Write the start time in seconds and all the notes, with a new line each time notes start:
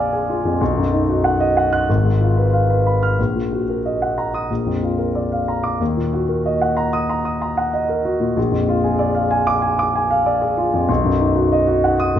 Already playing: A#1 F2 F4 G#4 D5 F5 G#5 D6
0.13 G#4
0.30 F4
0.45 F2
0.61 B1
0.77 F#2
0.93 D#4
1.09 F#4
1.24 F#5
1.40 D#5
1.57 F#5
1.73 F#6
1.89 G#1
2.04 G#2
2.21 F4
2.37 B4
2.53 F5
2.70 B4
2.87 B5
3.03 F6
3.19 A#1
3.36 A#2
3.52 F#4
3.69 A#4
3.85 D#5
4.02 F#5
4.18 A#5
4.34 D#6
4.50 A#1
4.66 F2
4.83 F4
4.98 A#4
5.15 D5
5.32 F5
5.48 A#5
5.64 D6
5.81 D#2
5.97 A#2
6.13 F#4
6.29 A#4
6.46 D#5
6.61 F#5
6.77 A#5
6.93 D#6
7.09 A#5
7.25 D#6
7.42 A#5
7.57 F#5
7.73 D#5
7.89 A#4
8.05 F#4
8.20 A#2
8.37 A#1
8.52 F2
8.68 F4
8.84 G#4
8.99 D5
9.15 F5
9.31 G#5
9.47 D6
9.62 G#5
9.79 D6
9.95 G#5
10.11 F5
10.26 D5
10.42 G#4
10.57 F4
10.73 F2
10.88 B1
11.05 F#2
11.20 D#4
11.36 F#4
11.52 D#5
11.67 F#4
11.84 F#5
12.00 D#6
12.16 G#1